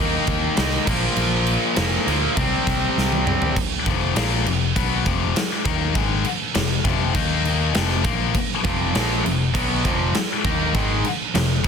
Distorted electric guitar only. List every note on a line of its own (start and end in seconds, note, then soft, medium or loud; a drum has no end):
0.00 0.86 D#3 medium
0.00 0.86 A#3 medium
0.00 0.87 D#4 medium
0.86 2.05 A#2 loud
0.86 2.05 F3 loud
0.86 2.05 A#3 loud
2.07 2.36 A#2 medium
2.07 2.36 F3 medium
2.07 2.35 A#3 medium
2.36 3.54 C3 medium
2.36 3.55 G3 medium
2.36 3.56 C4 loud
3.87 4.16 F2 medium
3.87 4.15 C3 medium
3.87 4.14 F3 loud
4.15 4.45 A#2 medium
4.15 4.45 F3 loud
4.15 4.45 A#3 loud
4.47 4.70 F2 medium
4.47 4.71 C3 medium
4.76 5.05 B2 medium
4.76 5.06 F#3 medium
4.76 5.06 B3 loud
5.06 5.35 F2 loud
5.06 5.35 C3 loud
5.06 5.35 F3 loud
5.36 muted distorted electric guitar stroke medium
5.65 5.94 D#3 loud
5.65 5.95 A#3 loud
5.65 5.95 D#4 loud
5.94 6.24 G#2 loud
5.94 6.24 D#3 loud
5.94 6.25 G#3 loud
6.55 6.79 F2 medium
6.55 6.79 C3 medium
6.84 7.14 F2 medium
6.84 7.14 C3 loud
6.84 7.15 F3 loud
7.15 7.74 D#3 loud
7.15 7.74 A#3 loud
7.15 7.74 D#4 loud
7.74 8.04 F2 loud
7.74 8.03 C3 loud
7.74 8.03 F3 loud
8.04 8.33 A#2 loud
8.04 8.34 F3 loud
8.04 8.34 A#3 loud
8.63 8.93 F2 loud
8.63 8.93 C3 loud
8.63 8.94 F3 loud
8.94 9.23 A#2 medium
8.94 9.24 F3 loud
8.94 9.24 A#3 medium
9.24 9.48 F2 medium
9.24 9.49 C3 medium
9.54 9.83 B2 loud
9.54 9.83 F#3 loud
9.54 9.84 B3 loud
9.85 10.14 F2 medium
9.85 10.14 C3 medium
9.85 10.15 F3 loud
10.16 muted distorted electric guitar stroke medium
10.45 10.73 D#3 loud
10.45 10.74 A#3 loud
10.45 10.74 D#4 loud
10.76 11.04 G#2 loud
10.76 11.04 D#3 loud
10.76 11.04 G#3 loud
11.35 11.58 F2 medium
11.35 11.59 C3 medium
11.64 11.68 F2 loud
11.64 11.68 C3 medium